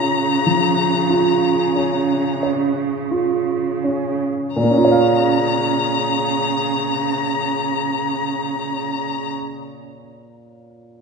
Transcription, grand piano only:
0.00 0.42 A#2 soft
0.00 1.76 C#4 soft
0.00 0.22 F4 soft
0.00 2.43 C#5 soft
0.47 1.49 F3 soft
1.10 2.16 F4 soft
1.76 2.84 C#4 soft
2.43 3.55 C#5 soft
3.11 4.28 F4 soft
3.84 4.56 C#4 soft
4.56 9.31 A#2 soft
4.63 9.38 A#3 soft
4.71 9.45 C#4 soft
4.77 9.52 F4 soft
4.85 9.59 C#5 soft
4.92 9.66 F5 soft

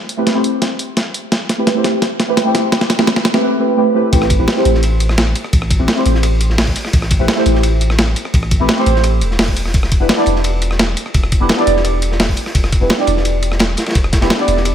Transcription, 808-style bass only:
4.13 4.38 A1 loud
4.39 4.47 A1 medium
4.65 5.34 A1 medium
5.53 5.78 A1 loud
5.79 5.87 A1 medium
6.06 6.75 A1 medium
6.93 7.18 A1 medium
7.20 7.28 A1 medium
7.46 8.15 A1 medium
8.34 8.59 A1 loud
8.60 8.68 A1 medium
8.86 9.23 A1 medium
9.22 9.73 E1 medium
9.74 9.99 E1 medium
10.00 10.08 E1 medium
10.27 10.96 E1 medium
11.14 11.39 E1 loud
11.41 11.49 E1 medium
11.67 12.36 E1 medium
12.55 12.80 E1 loud
12.81 12.89 E1 medium
13.08 13.76 E1 medium
13.95 14.20 E1 loud
14.22 14.30 E1 medium
14.48 14.75 E1 medium

